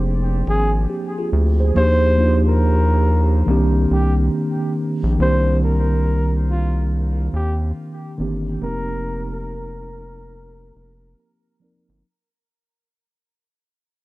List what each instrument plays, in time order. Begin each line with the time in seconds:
Already playing: analog synth bass F1, tine electric piano F3 A#3 C4 D4 G#4
0.47 analog synth bass G#1, flugelhorn G#4
0.90 tine electric piano G4
1.18 tine electric piano F4 G#4
1.33 analog synth bass D2
1.60 tine electric piano G#4 C5
1.74 analog synth bass D#2, tine electric piano F3 A#3 D4 D#4, flugelhorn C5
1.78 tine electric piano G4
2.16 tine electric piano F3 A#3 D4 D#4
2.20 tine electric piano F4
2.27 tine electric piano G4
2.48 flugelhorn A#4
3.46 analog synth bass C2, tine electric piano D#3 A#3 C4 D4
3.50 tine electric piano G4
3.91 analog synth bass C2, flugelhorn G4
5.03 analog synth bass A#1
5.19 analog synth bass C2, tine electric piano D#3 A#3 C4 D4, flugelhorn C5
5.23 tine electric piano G4
5.64 flugelhorn A#4
6.50 flugelhorn F4
7.33 analog synth bass D#2, flugelhorn G4
8.18 analog synth bass G1, tine electric piano D#3 A#3 C4 D4
8.22 tine electric piano G4
8.61 analog synth bass F1, tine electric piano F3 A#3 C4 D#4 G4, flugelhorn A#4
9.33 flugelhorn A#4
10.76 analog synth bass F1
11.20 tine electric piano A#5
11.60 tine electric piano F3 A#3 C4 D#4 D5
11.64 tine electric piano A#4
11.89 analog synth bass G1